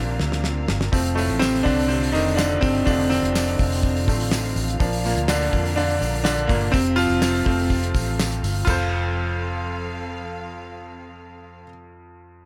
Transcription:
Already playing: fingered electric bass A#1, upright piano A#2 C3 D3 F3 A#3 C4 D4, string section D4 F4 A#4 F5
0.20 fingered electric bass D2, snare
0.32 snare
0.44 snare
0.68 fingered electric bass G1, snare
0.81 snare
0.92 fingered electric bass F1, upright piano F3 A3 C4, string section C4 F4 A4 F5, kick, hi-hat pedal, open hi-hat, tambourine
1.06 hi-hat pedal
1.15 upright piano A2 A3, hi-hat pedal, open hi-hat, tambourine
1.29 fingered electric bass A1, open hi-hat
1.39 upright piano C3 C4, snare, clap, hi-hat pedal, open hi-hat, tambourine
1.54 snare, hi-hat pedal, open hi-hat
1.63 fingered electric bass C2, upright piano D3 D4, kick, hi-hat pedal, open hi-hat, tambourine
1.79 hi-hat pedal, open hi-hat
1.88 upright piano C3 C4, hi-hat pedal, open hi-hat
2.02 hi-hat pedal, open hi-hat
2.12 fingered electric bass F1, upright piano D#3 D#4, hi-hat pedal, open hi-hat, tambourine
2.27 hi-hat pedal, open hi-hat
2.36 upright piano D3 D4, snare, clap, tambourine
2.51 hi-hat pedal
2.61 fingered electric bass G1, upright piano C3 C4, kick, hi-hat pedal, open hi-hat, tambourine
2.75 open hi-hat
2.86 fingered electric bass F1, upright piano D3 F3 A3 C4 D4, kick, hi-hat pedal, open hi-hat, tambourine
2.99 hi-hat pedal, open hi-hat
3.10 upright piano C3 C4, hi-hat pedal, open hi-hat, tambourine
3.23 fingered electric bass F1, hi-hat pedal, open hi-hat
3.35 snare, clap, hi-hat pedal, open hi-hat, tambourine
3.47 snare, hi-hat pedal, open hi-hat
3.59 fingered electric bass F1, kick, hi-hat pedal, open hi-hat, tambourine
3.71 hi-hat pedal, open hi-hat
3.83 kick, hi-hat pedal, open hi-hat
3.96 hi-hat pedal, open hi-hat
4.08 fingered electric bass A1, upright piano F3 A3 C4, kick, hi-hat pedal, open hi-hat, tambourine
4.19 hi-hat pedal, open hi-hat
4.31 snare, clap, hi-hat pedal, open hi-hat, tambourine
4.44 hi-hat pedal, open hi-hat
4.56 fingered electric bass A1, hi-hat pedal, open hi-hat, tambourine
4.68 hi-hat pedal, open hi-hat
4.80 fingered electric bass A#1, upright piano F3 A#3 D4, string section D4 A#4, kick, hi-hat pedal, open hi-hat, tambourine
4.92 hi-hat pedal, open hi-hat
5.04 upright piano A#2 A#3, hi-hat pedal, open hi-hat, tambourine
5.16 fingered electric bass D2, hi-hat pedal, open hi-hat
5.28 upright piano D3 D4, snare, clap, hi-hat pedal, open hi-hat, tambourine
5.41 snare, hi-hat pedal, open hi-hat
5.53 fingered electric bass F2, kick, hi-hat pedal, open hi-hat
5.65 hi-hat pedal, open hi-hat
5.76 upright piano D3 D4, hi-hat pedal, open hi-hat, tambourine
5.90 hi-hat pedal, open hi-hat
6.01 fingered electric bass A#1, hi-hat pedal, open hi-hat, tambourine
6.14 hi-hat pedal, open hi-hat
6.24 upright piano D3 D4, snare, clap, hi-hat pedal, open hi-hat, tambourine
6.37 hi-hat pedal
6.47 fingered electric bass G1, upright piano A#2 A#3, kick, hi-hat pedal, open hi-hat, tambourine
6.61 open hi-hat
6.72 fingered electric bass F1, upright piano C3 C4, string section C4 A4, kick, hi-hat pedal, open hi-hat, tambourine
6.85 hi-hat pedal
6.96 upright piano F3 F4, hi-hat pedal, open hi-hat, tambourine
7.10 fingered electric bass F1, open hi-hat
7.22 snare, clap, hi-hat pedal, open hi-hat, tambourine
7.34 hi-hat pedal, open hi-hat
7.45 fingered electric bass F1, upright piano F3 A3 C4, kick, hi-hat pedal, open hi-hat
7.58 hi-hat pedal, open hi-hat
7.70 kick, hi-hat pedal, open hi-hat, tambourine
7.83 hi-hat pedal
7.94 fingered electric bass A1, kick, hi-hat pedal, open hi-hat, tambourine
8.07 open hi-hat
8.19 snare, clap, hi-hat pedal, open hi-hat, tambourine
8.32 hi-hat pedal
8.43 fingered electric bass G1, hi-hat pedal, open hi-hat, tambourine
8.55 open hi-hat
8.65 fingered electric bass F1, upright piano F2 F4 A4, string section F3 C4 A4 F5, kick, floor tom, tambourine, crash
8.70 upright piano C5

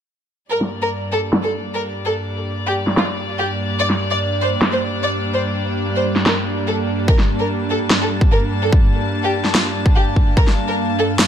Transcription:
0.51 string section G2 G3 A#3 D4 D5, ambient pad D4, violin section A#4
0.61 snare
0.67 ambient pad A#3
0.82 violin section A#4
1.12 violin section A4
1.25 ambient pad G5
1.33 snare
1.43 violin section A4
1.74 violin section A#4
2.05 violin section A4
2.67 violin section G4
2.87 snare
2.97 violin section F4, snare
3.38 violin section G4
3.79 violin section D5
3.90 snare
4.10 violin section D5
4.41 violin section C5
4.62 snare
4.72 violin section C5
5.03 violin section D5
5.34 violin section C5
5.95 violin section C5
6.16 snare
6.26 violin section A#4, snare
6.67 violin section A4
7.08 violin section A#4, string section A5, kick
7.19 snare
7.39 violin section A#4
7.70 violin section A4, ambient pad F5
7.90 snare
8.01 violin section A4
8.21 kick
8.31 violin section A#4
8.62 violin section A4
8.72 kick
9.24 violin section G4
9.45 snare
9.55 violin section F4, snare
9.86 kick
9.96 violin section G4
10.16 kick
10.37 violin section A#4, kick
10.47 snare
10.68 violin section A#4
10.99 violin section A4
11.19 snare

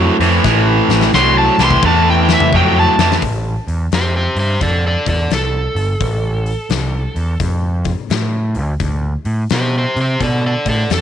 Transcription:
Already playing: overdriven electric guitar A2 F#3, tonewheel organ C4 E4 A4 C5
0.20 picked electric bass F2, overdriven electric guitar A2 E3, snare, open hi-hat
0.44 picked electric bass A1, overdriven electric guitar A2 E3, tonewheel organ C#4 F4 A#4, kick, snare
0.68 tonewheel organ C4 E4 A4
0.89 picked electric bass A1, snare
1.01 snare
1.13 picked electric bass C2, overdriven electric guitar A2 F#3, electric slide guitar C6, snare
1.38 electric slide guitar A5
1.58 picked electric bass C2, overdriven electric guitar A2 E3, snare
1.64 electric slide guitar C6
1.71 kick
1.82 picked electric bass E2, overdriven electric guitar A2 E3, kick
1.86 electric slide guitar A5
2.10 electric slide guitar G5
2.29 snare
2.33 electric slide guitar E5
2.40 mid tom
2.52 picked electric bass F2, overdriven electric guitar A2 F#3, electric slide guitar G5, kick
2.79 electric slide guitar A5
2.98 picked electric bass F2, overdriven electric guitar A2 E3, snare
3.12 snare
3.22 picked electric bass A1, kick, open hi-hat
3.68 picked electric bass E2, open hi-hat
3.92 picked electric bass F2, electric slide guitar G4 C5, snare, open hi-hat
4.16 electric slide guitar G4 C5
4.36 picked electric bass G2, electric slide guitar G4, open hi-hat
4.40 electric slide guitar C5
4.61 picked electric bass F2, electric slide guitar A4 D5, kick, open hi-hat
4.87 electric slide guitar A4 D5
5.06 picked electric bass E2, electric slide guitar A4 D5, kick, open hi-hat
5.31 picked electric bass C2, electric slide guitar A4, snare, open hi-hat
5.75 picked electric bass G1, open hi-hat
6.01 picked electric bass A1, kick, open hi-hat
6.46 open hi-hat
6.70 picked electric bass C2, snare, open hi-hat
7.16 picked electric bass E2, open hi-hat
7.40 picked electric bass F2, kick, open hi-hat
7.85 kick, open hi-hat
8.10 picked electric bass A2, snare, open hi-hat
8.55 picked electric bass D2, open hi-hat
8.80 picked electric bass D2, kick, open hi-hat
9.25 picked electric bass A2, open hi-hat
9.50 picked electric bass B2, electric slide guitar G4, snare, open hi-hat
9.54 electric slide guitar C5
9.78 electric slide guitar G4 C5
9.96 picked electric bass C3, open hi-hat
10.01 electric slide guitar G4 C5
10.20 picked electric bass B2, electric slide guitar A4 D5, kick, open hi-hat
10.46 electric slide guitar A4 D5
10.66 picked electric bass A2, electric slide guitar A4 D5, kick, open hi-hat
10.90 picked electric bass F2, electric slide guitar A4, snare, open hi-hat

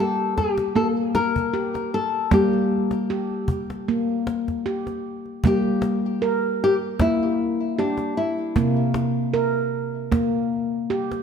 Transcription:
Already playing: handpan G3 G4
0.00 nylon-string guitar A4
0.38 nylon-string guitar G4, cajon bass, cajon slap
0.58 cajon slap
0.75 handpan A#3, nylon-string guitar A4, cajon slap
1.15 nylon-string guitar A#4, cajon slap
1.36 cajon bass
1.54 handpan G4, cajon slap
1.75 cajon slap
1.94 nylon-string guitar A4
2.31 handpan G3 A#3, nylon-string guitar G4, cajon bass, cajon slap
2.91 cajon slap
3.10 handpan G4
3.31 cajon slap
3.48 cajon bass
3.70 cajon slap
3.88 handpan A#3
4.09 cajon slap
4.27 cajon slap
4.48 cajon bass, cajon slap
4.66 handpan G4, cajon slap
4.87 cajon slap
5.25 cajon slap
5.44 handpan G3 A#3, nylon-string guitar G4, cajon bass
5.82 cajon slap
6.22 handpan A#4
6.64 nylon-string guitar G4
7.00 handpan A#3, nylon-string guitar E4, cajon bass, cajon slap
7.20 cajon slap
7.79 nylon-string guitar D4, handpan G4
7.98 cajon slap
8.17 nylon-string guitar E4
8.56 handpan C3 A#3, cajon bass
8.94 cajon slap
9.34 handpan A#4
10.12 handpan A#3, cajon bass, cajon slap
10.34 cajon slap
10.90 handpan G4
11.12 cajon slap

